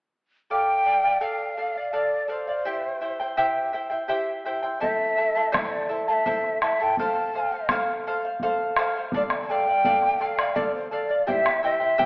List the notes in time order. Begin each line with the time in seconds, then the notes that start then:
0.50 A4 D5 F5 G5
0.85 A4 D5 F5
1.04 D5 F5
1.20 A4 D5 F5
1.57 A4 D5 F5
1.76 D5 F5
1.93 A4 D5 F5
2.28 A4 C5 D5 F5
2.47 D5 F5
2.65 E4 G4 C5 E5 G5
3.01 E4 C5 E5 G5
3.20 E4 C5 G5
3.37 E4 G4 C5 E5 G5
3.73 E4 C5 E5 G5
3.90 E4 C5 G5
4.08 E4 G4 C5 E5 G5
4.45 E4 C5 E5 G5
4.63 E4 C5 G5
4.80 E4 A4 C5 E5 A5, bombo low
5.17 E4 A4 E5 A5
5.35 E4 A4 A5, bombo rim
5.51 E4 A4 C5 D5 E5 A5, bombo rim, bombo low
5.60 C5
5.68 D5 E5
5.89 E4 A4 C5 E5 A5
6.08 E4 A4 F5 A5
6.12 E5
6.26 E4 A4 C5 E5 A5, bombo low
6.44 bombo rim
6.61 E4 A4 E5 A5, bombo rim
6.80 E4 A4 G5 A5
6.97 A4 C5 F5 A5, bombo low
7.16 bombo rim
7.35 A4 C5 F5
7.52 C5 F5
7.69 A4 C5 F5, bombo rim, bombo low
8.04 A4 C5 F5, bombo rim
8.25 C5 F5
8.40 A4 C5 F5, bombo low
8.76 A4 C5 F5, bombo rim
8.96 C5 F5
9.12 A4 D5 F5, bombo low
9.16 D5
9.30 bombo rim
9.42 A5
9.49 A4 D5 F5 G5
9.67 D5 F5
9.85 A4 D5 F5, bombo low
10.02 bombo rim
10.20 A4 D5 F5 G5, bombo rim
10.25 F5
10.38 D5 F5, bombo rim
10.55 A4 D5 F5, bombo low
10.74 C5
10.91 A4 D5 F5
11.09 D5 F5
11.27 E4 G4 C5 E5 F5 G5, bombo low
11.32 E5
11.46 bombo rim
11.63 E4 C5 E5 G5
11.80 E4 C5 G5
11.98 E4 G4 C5 E5 G5, bombo low